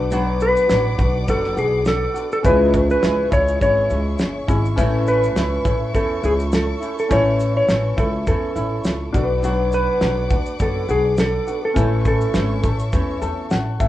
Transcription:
Already playing: upright bass B1, nylon-string guitar B3 D4 F#4, felt piano D4 F#4 B4, string section B4 D5 F#5 D6
0.11 nylon-string guitar B2 F#3 B3 D4 F#4, shaker
0.40 electric slide guitar B4, shaker
0.57 shaker
0.69 upright bass A1, nylon-string guitar F#3 B3 D4 F#4, snare, shaker
0.98 upright bass B1, nylon-string guitar B3 D4 F#4, kick, shaker
1.27 upright bass F#1, nylon-string guitar F#3 B3 D4 F#4, electric slide guitar A4, kick, shaker
1.44 snare
1.56 upright bass B1, nylon-string guitar B3 D4 F#4, electric slide guitar G#4, shaker
1.85 electric slide guitar A4, snare, shaker
2.14 nylon-string guitar B3 D4 F#4, shaker
2.32 electric slide guitar A4, shaker
2.43 upright bass C#2, nylon-string guitar C#3 E3 G#3 C#4 E4, felt piano C#4 E4, string section G#4 C#5 E5 C#6, electric slide guitar B4, kick, shaker
2.47 felt piano G#4
2.74 kick, shaker
2.90 electric slide guitar B4, shaker
3.01 upright bass C#2, nylon-string guitar E3 G#3 C#4 E4, snare, shaker
3.31 upright bass C#2, nylon-string guitar G#3 C#4 E4, electric slide guitar C#5, kick, shaker
3.48 shaker
3.60 upright bass G#1, nylon-string guitar E3 G#3 C#4 E4, electric slide guitar C#5, kick, shaker
3.89 upright bass C#2, nylon-string guitar G#3 C#4 E4, shaker
4.19 upright bass F#1, snare, shaker
4.48 upright bass G#1, nylon-string guitar G#3 C#4 E4, felt piano C#4 E4 G#4, kick, shaker
4.65 shaker
4.76 upright bass A1, nylon-string guitar A2 E3 A3 C#4 E4, felt piano C#4 E4, string section A4, kick, shaker
4.80 felt piano A4
5.07 electric slide guitar B4, shaker
5.24 shaker
5.35 upright bass C#2, nylon-string guitar E3 A3 C#4 E4, snare, shaker
5.65 upright bass A1, nylon-string guitar A3 C#4 E4, kick, shaker
5.93 upright bass E2, nylon-string guitar E3 A3 C#4 E4, electric slide guitar A4, kick, shaker
6.22 upright bass C#2, nylon-string guitar A3 C#4 E4, electric slide guitar G#4, shaker
6.40 shaker
6.52 electric slide guitar A4, snare, shaker
6.80 nylon-string guitar A3 C#4 E4, shaker
6.98 electric slide guitar A4, shaker
7.09 upright bass A1, nylon-string guitar A2 E3 A3 C#4 E4, felt piano C#4 E4, electric slide guitar C#5, kick, shaker
7.13 felt piano A4
7.40 shaker
7.57 electric slide guitar C#5
7.68 upright bass A1, nylon-string guitar E3 A3 C#4 E4, snare, shaker
7.97 upright bass C#2, nylon-string guitar A3 C#4 E4, electric slide guitar A4, kick, shaker
8.26 upright bass E2, nylon-string guitar E3 A3 C#4 E4, electric slide guitar A4, kick, shaker
8.55 upright bass A1, nylon-string guitar A3 C#4 E4, shaker
8.84 upright bass C#2, snare, shaker
9.13 upright bass B1, nylon-string guitar B3 D4 F#4, felt piano D4 F#4 A4, string section B4 D5 F#5 D6, kick, shaker
9.23 felt piano B4
9.43 nylon-string guitar B2 F#3 B3 D4 F#4, shaker
9.72 electric slide guitar B4, shaker
10.01 upright bass B1, nylon-string guitar F#3 B3 D4 F#4, snare, shaker
10.30 upright bass D2, nylon-string guitar B3 D4 F#4, kick, shaker
10.46 shaker
10.60 upright bass F#1, nylon-string guitar F#3 B3 D4 F#4, electric slide guitar A4, kick, shaker
10.89 upright bass B1, nylon-string guitar B3 D4 F#4, electric slide guitar G#4, shaker
11.17 electric slide guitar A4, snare, shaker
11.47 nylon-string guitar B3 D4 F#4, shaker
11.65 electric slide guitar A4
11.74 upright bass A1, nylon-string guitar A2 E3 A3 C#4 A4, felt piano C#4 E4 A4, string section A4 C#5 E5 C#6, kick, shaker
12.05 electric slide guitar A4, kick, shaker
12.21 shaker
12.34 upright bass G#1, nylon-string guitar E3 A3 C#4 A4, snare, shaker
12.63 upright bass A1, nylon-string guitar A3 C#4 A4, kick, shaker
12.79 shaker
12.92 upright bass E2, nylon-string guitar E3 A3 C#4 A4, kick, shaker
13.22 upright bass E2, nylon-string guitar A3 C#4 A4, felt piano A5, shaker
13.50 upright bass A1, felt piano F#5, snare, shaker
13.79 upright bass G#1, nylon-string guitar A3 C#4 A4, felt piano E5, kick, shaker

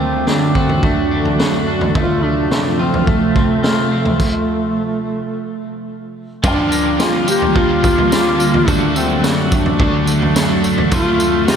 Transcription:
Already playing: ambient pad F#2 D3 F#3 A3 F#4 A4, duduk C4, clean electric guitar D4
0.00 clean electric guitar A3
0.27 clean electric guitar D4, duduk D4, snare
0.55 duduk C4, clean electric guitar F#4, kick
0.69 floor tom
0.83 clean electric guitar A3, duduk D4, kick, floor tom
1.11 clean electric guitar D4
1.25 floor tom
1.39 clean electric guitar F#4, snare
1.67 clean electric guitar D4
1.81 floor tom
1.95 ambient pad C3 F3 A3 F4 A4, clean electric guitar A3, duduk F4, kick, floor tom
2.23 clean electric guitar A3, duduk D4
2.51 clean electric guitar C4, duduk D4, snare
2.79 duduk C4, clean electric guitar F4
2.94 floor tom
3.07 clean electric guitar A3, duduk A3, kick, floor tom
3.35 clean electric guitar C4, kick
3.63 clean electric guitar F4, snare
3.92 clean electric guitar C4
4.05 floor tom
4.20 kick, crash
6.43 overdriven electric guitar G2 D3 F3 A#3 D4 G4, ambient pad D3 G3 A#3 F4 G4, clean electric guitar F3 F4, duduk D4, kick, floor tom, tambourine
6.72 clean electric guitar A#3, tambourine
7.00 clean electric guitar F4, duduk F4, snare, tambourine
7.27 clean electric guitar A#3, overdriven electric guitar A#3 D4 G4, duduk G4, tambourine
7.31 overdriven electric guitar F3
7.42 floor tom
7.55 overdriven electric guitar F3 A#3 D4, clean electric guitar D4, duduk F4, kick, floor tom
7.59 overdriven electric guitar G4
7.84 clean electric guitar A#3, kick, tambourine
7.98 floor tom
8.10 overdriven electric guitar F3 A#3 D4, clean electric guitar D4, snare, tambourine
8.15 overdriven electric guitar G4
8.40 clean electric guitar A#3, tambourine
8.54 floor tom
8.66 ambient pad F#2 F#3 A3 F#4 A4, overdriven electric guitar F#3 D4, clean electric guitar A3 F#4, duduk D4, kick, floor tom, tambourine
8.71 overdriven electric guitar F#4 A4
8.96 clean electric guitar A3, duduk C4, tambourine
9.24 duduk D4, clean electric guitar F#4, snare, tambourine
9.52 clean electric guitar A3, duduk D4, kick, tambourine
9.66 floor tom
9.79 overdriven electric guitar F#3 D4 F#4, clean electric guitar D4, kick, floor tom
9.83 overdriven electric guitar A4
10.07 clean electric guitar A3, tambourine
10.22 floor tom
10.35 overdriven electric guitar F#3 D4 F#4, clean electric guitar D4, snare, tambourine
10.39 overdriven electric guitar A4
10.64 clean electric guitar A3, tambourine
10.78 floor tom
10.91 ambient pad C3 F3 F4, overdriven electric guitar F3 C4 F4 A4, clean electric guitar A3 F4, duduk F4, kick, floor tom, tambourine
11.20 clean electric guitar A3, tambourine
11.48 clean electric guitar F4, duduk G4, snare, tambourine

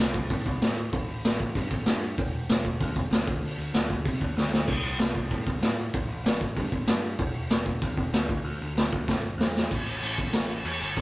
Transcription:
0.00 picked electric bass C2
0.14 picked electric bass C2, kick
0.30 picked electric bass A2, kick, open hi-hat
0.46 picked electric bass C2, kick
0.61 picked electric bass A2, snare, open hi-hat
0.92 picked electric bass A1, kick, open hi-hat
1.08 picked electric bass A1
1.25 picked electric bass A1, snare, open hi-hat
1.40 picked electric bass A1, kick
1.55 picked electric bass G2, kick, open hi-hat
1.71 picked electric bass A1, kick
1.86 picked electric bass G2, snare, open hi-hat
2.17 picked electric bass E1, kick, open hi-hat
2.33 picked electric bass E1
2.49 picked electric bass E1, snare, open hi-hat
2.65 picked electric bass E1, kick
2.80 picked electric bass D2, kick, open hi-hat
2.96 picked electric bass E1, kick
3.11 picked electric bass D2, snare, open hi-hat
3.27 picked electric bass D2, kick
3.43 picked electric bass D2, open hi-hat
3.58 picked electric bass D2
3.74 picked electric bass D2, snare, open hi-hat
3.90 picked electric bass D2, kick
4.05 picked electric bass C3, kick, open hi-hat
4.20 picked electric bass D2, kick
4.36 picked electric bass D2, snare
4.53 snare
4.68 picked electric bass C2, kick, crash
4.83 picked electric bass C2
4.98 picked electric bass C2, snare, open hi-hat
5.15 picked electric bass C2, kick
5.31 picked electric bass A2, kick, open hi-hat
5.46 picked electric bass C2, kick
5.61 picked electric bass A2, snare, open hi-hat
5.94 picked electric bass A1, kick, open hi-hat
6.08 picked electric bass A1
6.24 picked electric bass A1, snare, open hi-hat
6.40 picked electric bass A1, kick
6.57 picked electric bass G2, kick, open hi-hat
6.72 picked electric bass A1, kick
6.87 picked electric bass G2, snare, open hi-hat
7.19 picked electric bass E1, kick, open hi-hat
7.35 picked electric bass E1
7.50 picked electric bass E1, snare, open hi-hat
7.66 picked electric bass E1, kick
7.82 picked electric bass D2, kick, open hi-hat
7.97 picked electric bass E1, kick
8.12 picked electric bass D2, snare, open hi-hat
8.28 picked electric bass D2, kick
8.44 picked electric bass D2, open hi-hat
8.62 picked electric bass D2
8.75 picked electric bass D2, snare, open hi-hat
8.92 picked electric bass D2, kick
9.08 picked electric bass G1, kick, snare
9.22 picked electric bass G1
9.38 picked electric bass E2, snare
9.57 snare
9.71 picked electric bass A1, kick, crash
9.86 picked electric bass A1, crash
10.02 picked electric bass A1, crash
10.18 kick, crash
10.33 picked electric bass A1, snare, crash
10.49 crash
10.65 picked electric bass E2, crash
10.80 picked electric bass G1, crash
10.97 picked electric bass A1, kick, crash

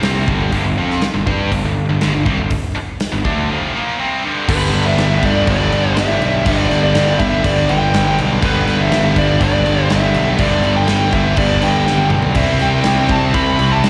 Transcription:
0.03 picked electric bass C2, distorted electric guitar C3 G3 C4, snare, open hi-hat
0.28 picked electric bass G1, distorted electric guitar G2 D3 G3, kick
0.52 picked electric bass G1, distorted electric guitar G2 D3, kick, open hi-hat
0.65 picked electric bass G1, distorted electric guitar G2 D3
0.77 picked electric bass F2, distorted electric guitar F3 C4 F4
0.90 snare
1.02 muted distorted electric guitar stroke, muted picked electric bass stroke, snare, open hi-hat
1.14 picked electric bass G1, distorted electric guitar G2 D3
1.27 picked electric bass G2, distorted electric guitar G3 D4 G4, kick
1.52 picked electric bass G1, distorted electric guitar G2 D3, kick, open hi-hat
1.64 picked electric bass G1, distorted electric guitar G2 D3
1.89 picked electric bass G1, distorted electric guitar G2 D3
2.01 picked electric bass G1, distorted electric guitar G2 D3, snare, open hi-hat
2.14 picked electric bass G1, distorted electric guitar G2 D3
2.26 picked electric bass C2, distorted electric guitar C3 G3, kick
2.38 picked electric bass G1, distorted electric guitar G2 D3
2.51 kick, open hi-hat
2.76 muted distorted electric guitar stroke, muted picked electric bass stroke
3.00 snare, open hi-hat
3.12 picked electric bass G1, distorted electric guitar G2 D3
3.25 picked electric bass D2, distorted electric guitar D3 A3 D4, kick
3.50 distorted electric guitar F2 C3 F3
3.75 distorted electric guitar A#2 F3 A#3
3.99 distorted electric guitar C3 G3 C4
4.24 distorted electric guitar G2 D3 G3
4.48 picked electric bass G1, distorted electric guitar G2 D3 G3 B3 D4, lead electric guitar B4, kick, crash
4.74 picked electric bass G1, crash
4.86 lead electric guitar E5
4.98 picked electric bass G1, snare, crash
5.23 picked electric bass G1, lead electric guitar D5, kick, crash
5.47 picked electric bass G1, lead electric guitar D5, kick, crash
5.72 picked electric bass G1, crash
5.97 picked electric bass G1, lead electric guitar E5, snare, crash
6.21 picked electric bass B1, crash
6.46 picked electric bass G1, distorted electric guitar G2 D3 G3 B3 D4, lead electric guitar D5, kick, crash
6.71 picked electric bass G1, snare, crash
6.83 lead electric guitar D5
6.95 picked electric bass G1, snare, crash
7.19 picked electric bass G1, lead electric guitar E5, kick, crash
7.44 picked electric bass G1, lead electric guitar D5, kick, crash
7.69 picked electric bass G1, lead electric guitar G5, crash
7.94 picked electric bass G1, snare, crash
8.18 picked electric bass B1, crash
8.42 picked electric bass G1, distorted electric guitar G2 D3 G3 B3 D4, lead electric guitar B4, kick, crash
8.67 picked electric bass G1, snare, crash
8.81 lead electric guitar E5
8.92 picked electric bass G1, snare, crash
9.16 picked electric bass G1, lead electric guitar D5, kick, crash
9.41 picked electric bass G1, lead electric guitar D5, kick, crash
9.66 picked electric bass G1, crash
9.90 picked electric bass G1, lead electric guitar E5, snare, crash
10.14 picked electric bass B1, crash
10.38 picked electric bass G1, distorted electric guitar G2 D3 G3 B3 D4, lead electric guitar D5, kick, crash
10.64 picked electric bass G1, crash
10.76 lead electric guitar G5
10.87 picked electric bass G1, snare, crash
11.12 picked electric bass G1, lead electric guitar E5, kick, crash
11.37 picked electric bass G1, lead electric guitar D5, kick, crash
11.62 picked electric bass G1, lead electric guitar G5, crash
11.87 picked electric bass G1, snare
11.98 high tom
12.10 picked electric bass B1, mid tom
12.22 floor tom
12.35 picked electric bass C2, distorted electric guitar C3 G3 C4, lead electric guitar E5, kick, crash
12.40 distorted electric guitar E4
12.59 picked electric bass C2, lead electric guitar G5, snare, crash
12.83 picked electric bass C2, snare, crash
13.09 picked electric bass C2, lead electric guitar A5, kick, crash
13.34 picked electric bass C2, lead electric guitar B5, kick, crash
13.59 picked electric bass C2, crash
13.72 lead electric guitar A5
13.84 picked electric bass C2, snare, crash

